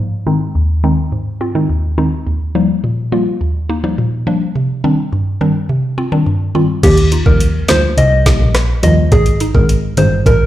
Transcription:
0.00 0.40 G#2 medium
0.27 0.38 D#3 medium
0.27 0.38 G#3 medium
0.27 0.38 C4 medium
0.27 0.38 D#4 medium
0.55 0.98 D#2 medium
0.84 0.95 D#3 medium
0.84 0.95 G#3 medium
0.84 0.95 C4 medium
0.84 0.95 D#4 medium
1.12 1.55 G#2 medium
1.41 1.46 C4 medium
1.41 1.46 F4 medium
1.55 1.66 D#3 medium
1.55 1.66 G#3 medium
1.55 1.66 C4 medium
1.55 1.66 D#4 medium
1.69 2.12 D#2 medium
1.98 2.09 D#3 medium
1.98 2.09 G#3 medium
1.98 2.09 C4 medium
1.98 2.09 D#4 medium
2.27 2.69 D#2 medium
2.55 2.66 F3 medium
2.55 2.66 G3 medium
2.55 2.66 A#3 medium
2.55 2.66 D#4 medium
2.84 3.26 A#2 medium
3.12 3.24 F3 medium
3.12 3.24 G3 medium
3.12 3.24 A#3 medium
3.12 3.24 F4 medium
3.41 3.83 D#2 medium
3.69 3.75 A#3 medium
3.69 3.75 D#4 medium
3.84 3.95 F3 medium
3.84 3.95 G3 medium
3.84 3.95 A#3 medium
3.84 3.95 D#4 medium
3.98 4.40 A#2 medium
4.27 4.38 F3 medium
4.27 4.38 G3 medium
4.27 4.38 A#3 medium
4.27 4.38 D4 loud
4.55 4.98 C3 medium
4.84 4.95 D#3 medium
4.84 4.95 G3 medium
4.84 4.95 C4 medium
4.84 4.95 D4 medium
5.12 5.55 G2 medium
5.41 5.52 D#3 medium
5.41 5.52 G3 medium
5.41 5.52 C4 medium
5.41 5.52 D4 loud
5.69 6.12 C3 medium
5.98 6.03 C4 medium
5.98 6.03 F4 loud
6.12 6.23 D#3 medium
6.12 6.23 G3 medium
6.12 6.23 C4 medium
6.12 6.23 D4 medium
6.26 6.69 G2 medium
6.55 6.66 D#3 medium
6.55 6.66 G3 medium
6.55 6.66 C4 medium
6.55 6.66 F4 medium
6.83 7.07 D#2 loud
6.83 6.96 G4 loud
6.83 kick loud
6.83 closed hi-hat medium
6.83 crash loud
6.97 closed hi-hat medium
7.12 7.18 D#4 medium
7.12 7.18 F4 medium
7.12 closed hi-hat medium
7.26 7.62 D#2 medium
7.26 7.38 F3 medium
7.26 7.38 G3 medium
7.26 7.38 A#3 medium
7.26 7.38 D#4 medium
7.26 7.38 G4 medium
7.26 7.38 A#4 medium
7.26 kick medium
7.40 closed hi-hat medium
7.68 7.93 D2 medium
7.68 7.81 F3 medium
7.68 7.81 G3 medium
7.68 7.81 A#3 medium
7.68 7.81 D#4 medium
7.68 7.81 F4 medium
7.68 7.81 C5 loud
7.68 snare loud
7.68 closed hi-hat medium
7.97 8.33 C2 loud
7.97 8.38 D#5 loud
7.97 closed hi-hat medium
8.26 8.38 F3 medium
8.26 8.38 G3 medium
8.26 8.38 A#3 medium
8.26 8.38 D#4 medium
8.26 8.38 G4 medium
8.26 kick medium
8.26 snare loud
8.26 closed hi-hat medium
8.40 8.52 A#1 medium
8.55 cross-stick loud
8.55 snare medium
8.55 closed hi-hat medium
8.83 9.07 D#2 medium
8.83 8.95 F3 medium
8.83 8.95 G3 medium
8.83 8.95 A#3 medium
8.83 8.95 D#4 medium
8.83 8.95 F4 medium
8.83 8.96 D#5 medium
8.83 closed hi-hat medium
9.12 9.36 G#1 loud
9.12 9.24 G#4 loud
9.12 kick loud
9.12 closed hi-hat medium
9.26 closed hi-hat medium
9.40 9.46 D#4 medium
9.40 9.46 G#4 medium
9.40 closed hi-hat medium
9.55 9.90 G#1 loud
9.55 9.66 D#3 medium
9.55 9.66 G#3 medium
9.55 9.66 C4 medium
9.55 9.66 D#4 medium
9.55 9.66 G#4 medium
9.55 9.67 A#4 medium
9.55 kick medium
9.69 closed hi-hat medium
9.97 10.21 G1 medium
9.97 10.09 D#3 medium
9.97 10.09 G#3 medium
9.97 10.09 C4 medium
9.97 10.09 D#4 medium
9.97 10.09 G#4 medium
9.97 10.10 C5 medium
9.97 closed hi-hat medium
10.26 10.46 G#1 loud
10.26 10.46 A#4 loud
10.26 kick medium
10.26 closed hi-hat medium

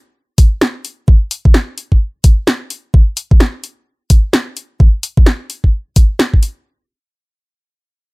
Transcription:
0.38 kick loud
0.38 open hi-hat loud
0.61 snare loud
0.85 open hi-hat medium
1.08 kick loud
1.31 open hi-hat loud
1.45 kick loud
1.54 snare loud
1.78 open hi-hat medium
1.92 kick medium
2.24 kick loud
2.24 open hi-hat loud
2.47 snare loud
2.70 open hi-hat medium
2.94 kick loud
3.17 open hi-hat loud
3.31 kick loud
3.40 snare loud
3.64 open hi-hat medium
4.10 kick loud
4.10 open hi-hat loud
4.33 snare loud
4.57 open hi-hat medium
4.80 kick loud
5.03 open hi-hat loud
5.17 kick loud
5.26 snare loud
5.50 open hi-hat medium
5.64 kick medium
5.96 kick loud
5.96 open hi-hat loud
6.19 snare loud
6.34 kick medium
6.43 open hi-hat medium

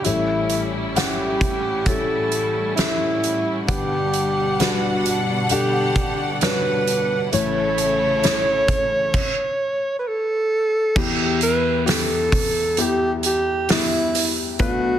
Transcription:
0.00 3.65 A2 medium
0.00 7.28 G3 medium
0.00 3.65 E4 medium
0.04 3.65 A1 medium
0.04 3.65 A2 medium
0.04 0.91 G3 medium
0.04 3.65 C#4 medium
0.04 0.91 C#4 medium
0.04 0.69 E4 medium
0.04 0.92 E4 medium
0.04 0.92 A4 medium
0.04 closed hi-hat medium
0.49 closed hi-hat medium
0.96 1.82 G3 medium
0.96 1.82 C#4 medium
0.96 1.82 E4 medium
0.96 1.88 G4 medium
0.96 1.83 F#5 medium
0.96 snare medium
0.96 closed hi-hat medium
1.41 kick medium
1.41 closed hi-hat medium
1.86 2.74 G3 medium
1.86 2.74 C#4 medium
1.86 2.74 E4 medium
1.86 2.74 G4 medium
1.86 2.76 A4 medium
1.86 kick medium
1.86 closed hi-hat medium
2.32 closed hi-hat medium
2.76 3.64 G3 medium
2.76 3.64 C#4 medium
2.76 3.64 E4 medium
2.76 3.64 A4 medium
2.76 snare loud
2.76 closed hi-hat medium
3.23 closed hi-hat medium
3.68 7.28 G1 medium
3.68 7.28 G2 medium
3.68 7.29 B2 medium
3.68 4.55 G3 medium
3.68 4.55 D4 medium
3.68 7.29 D4 medium
3.68 4.62 G4 medium
3.68 4.55 B4 medium
3.68 4.55 F#5 medium
3.68 7.29 F#5 medium
3.68 kick medium
3.68 closed hi-hat medium
4.13 closed hi-hat medium
4.59 5.46 G3 medium
4.59 5.46 D4 medium
4.59 5.46 F#4 medium
4.59 5.24 F#4 medium
4.59 5.46 B4 medium
4.59 snare medium
4.59 closed hi-hat medium
5.06 closed hi-hat medium
5.49 6.37 G3 medium
5.49 6.37 D4 medium
5.49 6.38 G4 medium
5.49 6.37 A4 medium
5.49 6.37 F#5 medium
5.49 closed hi-hat medium
5.96 kick medium
5.96 closed hi-hat medium
6.41 7.28 G3 medium
6.41 7.28 D4 medium
6.41 7.28 F#4 medium
6.41 7.30 B4 medium
6.41 7.29 C#5 medium
6.41 snare loud
6.41 closed hi-hat medium
6.87 closed hi-hat medium
7.32 9.11 A1 medium
7.32 9.11 A2 medium
7.32 9.13 C#3 medium
7.32 8.19 A3 medium
7.32 9.13 A3 medium
7.32 8.19 C#4 medium
7.32 9.13 E4 medium
7.32 8.19 E4 medium
7.32 9.13 A4 medium
7.32 8.19 C#5 medium
7.32 9.95 C#5 loud
7.32 closed hi-hat medium
7.78 closed hi-hat medium
8.23 9.10 A3 medium
8.23 9.10 C#4 medium
8.23 9.10 E4 medium
8.23 9.10 C#5 medium
8.23 snare medium
8.23 closed hi-hat medium
8.68 kick medium
8.68 closed hi-hat medium
9.14 kick medium
9.14 crash medium
9.99 10.09 B4 medium
10.08 11.00 A4 medium
10.96 14.56 E2 medium
10.96 14.56 E3 medium
10.96 11.82 B3 medium
10.96 11.83 E4 medium
10.96 11.83 G4 medium
10.96 11.42 G4 medium
10.96 kick loud
10.96 crash medium
11.41 11.85 B4 medium
11.41 hi-hat pedal medium
11.41 open hi-hat medium
11.86 12.73 B3 medium
11.86 12.73 E4 medium
11.86 12.73 G4 medium
11.86 snare medium
11.86 hi-hat pedal medium
11.86 open hi-hat loud
11.90 12.83 A4 medium
12.32 kick medium
12.32 hi-hat pedal medium
12.32 open hi-hat medium
12.77 13.64 B3 medium
12.77 13.64 E4 medium
12.77 13.64 G4 medium
12.77 hi-hat pedal medium
12.77 open hi-hat medium
12.81 13.13 G4 medium
13.23 13.73 G4 medium
13.23 hi-hat pedal medium
13.23 open hi-hat medium
13.69 14.55 B3 medium
13.69 14.56 E4 medium
13.69 14.34 E4 medium
13.69 14.55 G4 medium
13.69 snare loud
13.69 hi-hat pedal medium
13.69 open hi-hat medium
14.14 hi-hat pedal medium
14.14 open hi-hat medium
14.59 14.99 B1 medium
14.59 14.99 B2 medium
14.59 14.99 A3 medium
14.59 14.99 B3 medium
14.59 14.99 D4 medium
14.59 14.99 F#4 medium
14.59 14.99 F#4 loud
14.59 14.99 B4 loud
14.59 kick loud
14.59 hi-hat pedal medium
14.59 open hi-hat medium

